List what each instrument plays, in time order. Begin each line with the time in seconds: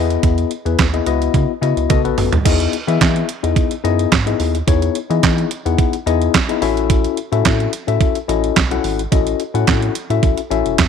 Already playing: analog synth bass E2, tine electric piano B3 E4 G#4 D#5
0.10 closed hi-hat
0.23 analog synth bass E2, kick, closed hi-hat
0.38 closed hi-hat
0.51 closed hi-hat
0.65 analog synth bass E2, tine electric piano B3 E4 G#4 B4, closed hi-hat
0.79 analog synth bass D#2, kick, snare, clap, closed hi-hat
0.93 tine electric piano B3 E4 G#4 D#5, closed hi-hat
1.06 analog synth bass C#2, tine electric piano B3 E4 F#4 D#5, closed hi-hat
1.22 closed hi-hat
1.34 analog synth bass C#3, kick, closed hi-hat
1.62 analog synth bass C#3, tine electric piano B3 E4 F#4 D#5, closed hi-hat
1.77 analog synth bass C#2, closed hi-hat
1.89 analog synth bass B1, tine electric piano B3 F#4 A4 D#5, kick, closed hi-hat, high tom
2.04 analog synth bass A1, tine electric piano B3 F#4 A4 B4, closed hi-hat
2.18 analog synth bass G#1, mid tom, open hi-hat
2.32 analog synth bass D#2, closed hi-hat, floor tom
2.45 analog synth bass E2, tine electric piano B3 D#4 E4 G#4 D#5, kick, closed hi-hat, crash
2.60 closed hi-hat
2.73 closed hi-hat
2.87 analog synth bass E3, tine electric piano B3 E4 G#4 D#5 E5, closed hi-hat
3.01 analog synth bass E3, kick, snare, clap, closed hi-hat
3.16 closed hi-hat
3.29 closed hi-hat
3.43 analog synth bass E2, tine electric piano B3 D#4 E4 G#4 D#5, closed hi-hat
3.56 kick, closed hi-hat
3.71 closed hi-hat
3.84 analog synth bass F#2, tine electric piano B3 D#4 E4 G#4 D#5, closed hi-hat
3.99 closed hi-hat
4.12 analog synth bass G#2, kick, snare, clap, closed hi-hat
4.26 tine electric piano B3 D#4 E4 G#4 D#5, closed hi-hat
4.40 analog synth bass D#2, open hi-hat
4.55 closed hi-hat
4.67 analog synth bass E2, tine electric piano B3 D#4 E4 G#4 C#5, kick, closed hi-hat
4.82 closed hi-hat
4.95 closed hi-hat
5.10 analog synth bass E3, tine electric piano B3 D#4 E4 G#4 D#5, closed hi-hat
5.23 analog synth bass E3, kick, snare, clap, closed hi-hat
5.38 closed hi-hat
5.51 closed hi-hat
5.65 analog synth bass E2, tine electric piano B3 D#4 E4 G#4 F#5, closed hi-hat
5.78 kick, closed hi-hat
5.93 closed hi-hat
6.06 analog synth bass E2, tine electric piano B3 D#4 E4 G#4 D#5, closed hi-hat
6.22 closed hi-hat
6.34 kick, snare, clap, closed hi-hat
6.49 tine electric piano B3 D#4 E4 G#4 D#5, closed hi-hat
6.62 analog synth bass A1, tine electric piano C#4 E4 F#4 A4 E5, open hi-hat
6.77 closed hi-hat
6.90 kick, closed hi-hat
7.04 closed hi-hat
7.17 closed hi-hat
7.32 analog synth bass A2, tine electric piano C#4 E4 F#4 A4 E5, closed hi-hat
7.45 analog synth bass A2, kick, snare, clap, closed hi-hat
7.60 closed hi-hat
7.73 closed hi-hat
7.87 analog synth bass A2, tine electric piano C#4 E4 F#4 A4 E5, closed hi-hat
8.01 kick, closed hi-hat
8.15 closed hi-hat
8.28 analog synth bass A1, tine electric piano C#4 E4 F#4 A4 D#5, closed hi-hat
8.44 closed hi-hat
8.56 analog synth bass B1, kick, snare, clap, closed hi-hat
8.71 tine electric piano C#4 E4 F#4 A4 F#5, closed hi-hat
8.84 analog synth bass G#1, open hi-hat
8.99 closed hi-hat
9.12 analog synth bass A1, tine electric piano C#4 E4 F#4 A4 D#5, kick, closed hi-hat
9.27 closed hi-hat
9.40 closed hi-hat
9.54 analog synth bass A2, tine electric piano C#4 E4 F#4 A4 F#5, closed hi-hat
9.67 analog synth bass A2, kick, snare, clap, closed hi-hat
9.82 closed hi-hat
9.95 closed hi-hat
10.10 analog synth bass A2, tine electric piano C#4 E4 F#4 A4 E5, closed hi-hat
10.23 analog synth bass A1, kick, closed hi-hat
10.37 closed hi-hat
10.51 analog synth bass A1, tine electric piano C#4 E4 F#4 A4 E5, closed hi-hat
10.66 analog synth bass E1, closed hi-hat
10.78 analog synth bass E2, kick, snare, clap, closed hi-hat